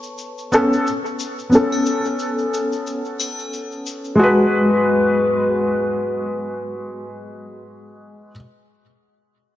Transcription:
0.00 4.16 B4 medium
0.00 4.15 A5 medium
0.00 4.15 C#6 medium
0.00 shaker soft
0.18 shaker soft
0.38 shaker soft
0.52 0.84 B3 medium
0.52 0.85 C#4 medium
0.52 0.85 A4 medium
0.52 shaker medium
0.73 shaker soft
0.87 shaker medium
1.06 shaker soft
1.19 shaker medium
1.39 shaker soft
1.50 4.16 B3 medium
1.50 4.17 C#4 medium
1.50 shaker soft
1.55 4.19 A4 medium
1.72 triangle medium
1.72 shaker soft
1.86 shaker medium
2.05 shaker soft
2.19 shaker soft
2.38 shaker soft
2.54 shaker medium
2.72 shaker soft
2.87 shaker medium
3.05 shaker soft
3.20 triangle medium
3.20 shaker medium
3.39 shaker soft
3.53 shaker soft
3.72 shaker soft
3.86 shaker medium
4.04 shaker soft
4.16 8.30 G#3 medium
4.16 8.32 F#4 medium
4.20 7.63 G#3 medium
4.20 7.63 F#4 medium
4.20 7.63 B4 medium
4.20 8.34 B4 medium

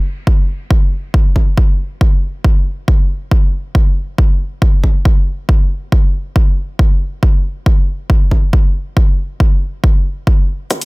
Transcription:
0.27 kick loud
0.71 kick loud
1.14 kick loud
1.36 kick medium
1.58 kick loud
2.01 kick loud
2.44 kick loud
2.88 kick loud
3.31 kick loud
3.75 kick loud
4.18 kick loud
4.62 kick loud
4.84 kick medium
5.05 kick loud
5.49 kick loud
5.92 kick loud
6.36 kick loud
6.79 kick loud
7.23 kick loud
7.66 kick loud
8.10 kick loud
8.31 kick medium
8.53 kick loud
8.97 kick loud
9.40 kick loud
9.84 kick loud
10.27 kick loud
10.71 kick loud
10.71 closed hi-hat medium
10.71 shaker soft
10.81 closed hi-hat medium
10.81 shaker soft

